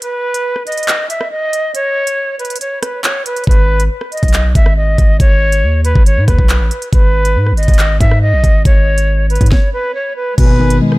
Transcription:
0.02 B4, closed hi-hat
0.34 closed hi-hat
0.56 cross-stick
0.67 D#5, closed hi-hat
0.72 closed hi-hat
0.77 closed hi-hat
0.83 closed hi-hat
0.88 clap, closed hi-hat
1.09 E5, closed hi-hat
1.21 cross-stick
1.31 D#5
1.53 closed hi-hat
1.75 C#5, closed hi-hat
2.07 closed hi-hat
2.39 B4, closed hi-hat
2.45 closed hi-hat
2.50 closed hi-hat
2.56 closed hi-hat
2.61 C#5, closed hi-hat
2.83 B4, cross-stick, closed hi-hat
3.04 C#5, clap, closed hi-hat
3.26 B4, closed hi-hat
3.36 closed hi-hat
3.44 G#1 B4, kick, closed hi-hat
3.51 closed hi-hat
3.80 closed hi-hat
4.01 cross-stick
4.12 D#5, closed hi-hat
4.17 closed hi-hat
4.23 B1, kick, closed hi-hat
4.28 closed hi-hat
4.34 clap, closed hi-hat
4.55 G#1 E5, kick, closed hi-hat
4.66 cross-stick
4.77 D#5
4.98 G#1, kick, closed hi-hat
5.20 G#1 C#5, kick, closed hi-hat
5.52 closed hi-hat
5.63 D#2
5.85 B4, closed hi-hat
5.95 G#1, kick
6.06 C#5, closed hi-hat
6.17 G#2
6.28 D#2 B4, kick, cross-stick, closed hi-hat
6.39 B1, kick
6.49 clap, closed hi-hat
6.60 A1
6.71 closed hi-hat
6.82 closed hi-hat
6.93 G#1 B4, kick, closed hi-hat
7.25 closed hi-hat
7.36 G#2
7.47 cross-stick
7.52 G#1
7.57 D#5, closed hi-hat
7.63 closed hi-hat
7.68 G#1, kick, closed hi-hat
7.74 closed hi-hat
7.79 clap, closed hi-hat
8.00 G#2 E5, kick, closed hi-hat
8.11 cross-stick
8.22 D#5
8.33 B1
8.44 G#1, kick, closed hi-hat
8.65 G#1 C#5, kick, closed hi-hat
8.98 closed hi-hat
9.30 B4, closed hi-hat
9.35 closed hi-hat
9.41 G#2, kick, closed hi-hat
9.46 closed hi-hat
9.51 C#5, kick, snare
9.73 B4
9.95 C#5
10.16 B4
10.38 G#1 B2 D#3 G#3 B3 G#4 B4, kick, closed hi-hat, crash
10.60 D#3
10.70 closed hi-hat
10.82 G#3
10.92 cross-stick

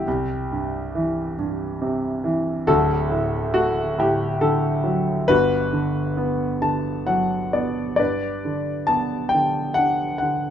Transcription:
Already playing: E4 G4
0.08 C2
0.52 G2
0.95 E3
1.39 G2
1.82 C3
2.24 E3
2.67 D1 D2 F#4 A4
3.10 A2
3.54 A3 F#4
3.98 A2 G4
4.41 D3 A4
4.84 F#3
5.28 G1 G2 F#4 B4
5.73 D3
6.17 B3
6.62 D3 A5
7.07 F#3 F#5
7.53 B3 D5
7.96 G2 B4 D5
8.45 D3
8.87 B3 A5
9.29 G5
9.34 D3
9.74 F#5
9.78 D4
10.18 D3 F#5

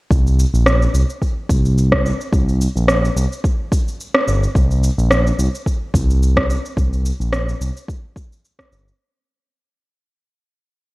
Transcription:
0.10 C2, kick, cabasa
0.27 cabasa
0.39 cabasa
0.54 A#1, cabasa
0.66 cross-stick, cabasa
0.82 cabasa
0.94 C2, cabasa
1.10 cabasa
1.22 kick, cabasa
1.49 C2, kick, cabasa
1.65 cabasa
1.78 cabasa
1.92 kick, cross-stick
2.06 cabasa
2.21 cabasa
2.33 C2, kick, cabasa
2.49 cabasa
2.61 cabasa
2.76 A#1, cabasa
2.88 cross-stick, cabasa
3.05 cabasa
3.16 C2, cabasa
3.32 cabasa
3.44 kick, cabasa
3.72 kick, cabasa
3.88 cabasa
4.00 cabasa
4.14 cross-stick
4.27 G1, cabasa
4.43 cabasa
4.55 C2, kick, cabasa
4.71 cabasa
4.83 cabasa
4.98 A#1, cabasa
5.11 cross-stick, cabasa
5.27 cabasa
5.38 C2, cabasa
5.55 cabasa
5.66 kick, cabasa
5.94 C2, kick, cabasa
6.11 cabasa
6.23 cabasa
6.37 kick, cross-stick
6.50 cabasa
6.66 cabasa
6.77 C2, kick, cabasa
6.93 cabasa
7.06 cabasa
7.20 A#1, cabasa
7.33 cross-stick, cabasa
7.49 cabasa
7.60 C2, cabasa
7.77 cabasa
7.88 kick, cabasa
8.16 kick, cabasa
8.33 cabasa
8.45 cabasa
8.59 kick, cross-stick, cabasa
8.72 G1, cabasa
8.88 cabasa

